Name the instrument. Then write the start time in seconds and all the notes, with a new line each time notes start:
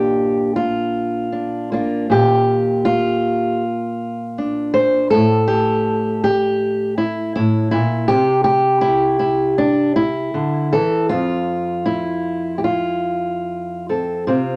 steel-string acoustic guitar
Already playing: A#2 D4 G4
0.56 F4
1.32 D4
1.72 A#3 D4 F4
2.10 A#2 G4
2.85 F4
4.38 D4
4.74 C5
5.10 A2 A4
5.48 G4
6.24 G4
6.98 E4
7.36 A2 E4
7.71 A#2 E4
8.08 C3 G4
8.44 G4
8.81 E4
9.19 E4
9.58 D4
9.96 E4
10.34 D3
10.73 E3 A4
11.09 F2 F4
11.86 E4
12.58 G4
12.64 F4
13.89 C4 A4
14.27 C3 C4 F4